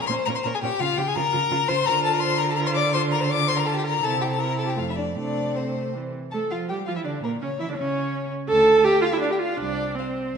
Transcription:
0.01 0.09 A#4 medium
0.01 0.05 A#5 medium
0.07 0.16 A#2 medium
0.07 0.17 C#4 medium
0.07 0.29 C5 medium
0.07 0.14 C6 loud
0.25 0.34 A#2 medium
0.25 0.36 C#4 medium
0.25 0.36 A#4 medium
0.25 0.29 A#5 medium
0.35 0.48 C5 medium
0.35 0.39 C6 medium
0.43 0.52 A#2 medium
0.43 0.52 C#4 medium
0.43 0.56 A#4 medium
0.43 0.47 A#5 medium
0.55 0.63 G#4 medium
0.55 0.58 G#5 medium
0.62 0.70 A#2 medium
0.62 0.70 C#4 medium
0.62 0.82 G4 medium
0.62 0.81 G5 loud
0.80 0.87 C#3 medium
0.80 1.00 F4 loud
0.80 0.88 F4 medium
0.80 0.99 F5 loud
0.97 1.05 C#3 medium
0.97 1.06 F4 medium
0.97 1.09 G4 medium
0.97 1.10 G5 loud
1.07 1.18 G#4 medium
1.07 1.16 G#5 loud
1.15 1.23 C#3 medium
1.15 1.23 F4 medium
1.15 1.70 A#4 medium
1.15 1.70 A#5 loud
1.32 1.41 C#3 medium
1.32 1.40 F4 medium
1.51 1.58 C#3 medium
1.51 1.58 F4 medium
1.68 1.76 C#3 medium
1.68 1.75 F4 medium
1.68 1.86 C5 loud
1.68 1.87 C6 loud
1.86 4.00 D3 medium
1.86 2.54 F4 medium
1.86 1.94 A#4 medium
1.86 2.03 A#5 loud
2.03 2.13 A4 medium
2.03 2.15 A5 loud
2.13 2.18 A#4 medium
2.13 2.22 A#5 loud
2.21 2.39 C5 medium
2.21 2.39 C6 loud
2.38 2.43 A#4 medium
2.38 2.51 A#5 loud
2.50 2.58 A4 medium
2.50 2.55 A5 medium
2.55 2.94 F4 medium
2.55 2.69 A#4 medium
2.55 2.60 A#5 loud
2.66 2.78 C5 medium
2.66 2.70 C6 medium
2.74 2.94 D5 loud
2.74 2.93 D6 loud
2.93 3.30 F4 medium
2.93 3.01 C5 medium
2.93 3.01 C6 loud
3.12 3.22 A#4 medium
3.12 3.25 A#5 medium
3.20 3.31 C5 medium
3.20 3.32 C6 medium
3.29 4.01 F4 medium
3.29 3.48 D5 medium
3.29 3.50 D6 loud
3.48 3.52 C5 medium
3.48 3.60 C6 loud
3.57 3.60 A#4 medium
3.57 3.69 A#5 medium
3.65 3.69 A4 medium
3.65 3.76 A5 loud
3.74 3.85 G4 medium
3.78 3.81 G5 medium
3.84 4.02 A#4 medium
3.84 4.06 A#5 medium
4.02 4.79 C3 medium
4.02 4.36 E4 medium
4.02 4.10 A4 medium
4.02 4.23 A5 loud
4.21 4.25 G4 medium
4.21 4.31 G5 medium
4.29 4.40 A4 medium
4.29 4.41 A5 medium
4.39 4.78 E4 medium
4.39 4.58 A#4 medium
4.39 4.58 A#5 medium
4.58 4.62 A4 medium
4.58 4.71 A5 medium
4.66 4.76 G4 medium
4.66 4.80 G5 medium
4.76 5.19 F2 medium
4.76 5.15 A3 medium
4.76 4.81 F4 medium
4.76 4.87 F5 medium
4.89 4.93 E4 medium
4.89 4.97 E5 medium
4.96 5.05 D4 medium
4.96 5.16 D5 medium
5.16 6.14 C3 medium
5.16 5.55 A3 soft
5.16 5.59 D4 medium
5.16 5.57 D5 medium
5.56 5.97 A3 soft
5.56 5.95 C4 soft
5.56 5.94 C5 medium
5.95 6.14 E3 soft
6.31 6.40 A3 medium
6.31 6.49 A4 medium
6.31 6.53 A4 medium
6.31 6.39 A5 medium
6.50 6.71 F3 soft
6.50 6.67 F4 soft
6.50 6.69 F4 medium
6.50 6.58 F5 soft
6.68 6.87 G3 medium
6.68 6.87 G4 medium
6.68 6.77 G4 medium
6.68 6.76 G5 medium
6.86 6.98 F3 soft
6.86 6.97 F4 medium
6.86 6.91 F4 medium
6.86 6.95 F5 medium
6.96 7.05 E3 soft
6.96 7.05 E4 soft
6.96 7.06 E4 medium
6.96 7.00 E5 soft
7.04 7.23 D3 medium
7.04 7.23 D4 medium
7.04 7.22 D4 medium
7.04 7.12 D5 soft
7.23 7.41 A#2 soft
7.23 7.40 A#3 medium
7.23 7.31 A#3 medium
7.23 7.31 A#4 medium
7.40 7.49 C#3 soft
7.40 7.48 C#4 medium
7.40 7.49 C#4 medium
7.40 7.61 C#5 medium
7.60 7.68 E3 medium
7.60 7.68 E4 medium
7.60 7.69 E4 medium
7.60 7.70 E5 medium
7.68 7.72 D3 soft
7.68 7.77 D4 medium
7.68 7.74 D4 medium
7.68 7.77 D5 soft
7.77 8.30 C#3 medium
7.77 8.30 C#4 medium
7.77 8.30 C#5 medium
8.48 8.79 D2 medium
8.48 8.86 A4 loud
8.48 8.87 A5 medium
8.84 9.01 G4 loud
8.84 8.93 F5 medium
8.84 9.03 G5 medium
9.02 9.06 F4 medium
9.02 9.15 F5 medium
9.13 9.16 E4 medium
9.13 9.21 E5 medium
9.20 9.32 D4 medium
9.20 9.25 D5 medium
9.20 9.31 F5 medium
9.31 9.40 G4 medium
9.31 9.35 G5 medium
9.39 9.59 F4 medium
9.39 9.60 F5 medium
9.57 9.90 C2 medium
9.57 9.97 D4 medium
9.57 9.96 D5 medium
9.95 10.38 C4 medium
9.95 10.38 C5 medium
9.95 10.07 F5 soft
10.34 10.38 C2 medium

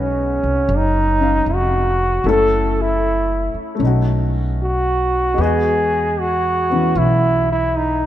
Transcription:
0.00 0.39 B1 medium
0.00 2.23 G#3 medium
0.00 0.79 C#4 medium
0.00 1.18 C#4 medium
0.00 2.25 D#4 soft
0.00 2.26 F#4 medium
0.43 0.67 C2 medium
0.69 1.42 F#1 medium
0.77 1.56 D#4 medium
1.20 2.24 C#4 soft
1.20 2.25 F5 soft
1.46 2.20 F1 medium
1.54 2.28 F#4 medium
2.24 3.50 F#1 medium
2.24 3.74 A3 soft
2.24 3.77 C#4 soft
2.24 3.81 E4 soft
2.24 3.81 A4 medium
2.29 2.83 A4 loud
2.82 3.57 E4 medium
3.54 muted upright bass stroke soft
3.75 5.36 A3 soft
3.75 5.38 C#4 soft
3.80 5.34 B1 medium
3.80 5.40 D#4 soft
3.86 5.42 F#4 soft
4.63 5.43 F#4 medium
5.34 6.92 E2 medium
5.34 8.06 G#3 medium
5.34 6.68 B3 soft
5.41 8.06 F#4 medium
5.41 6.22 G#4 loud
5.41 8.06 D#5 soft
6.20 7.00 F#4 medium
6.70 8.06 E3 soft
6.70 8.06 B3 soft
6.70 8.06 C#4 soft
6.95 8.06 B1 medium
6.95 7.50 E4 medium
7.52 7.79 E4 medium
7.77 8.06 D#4 medium

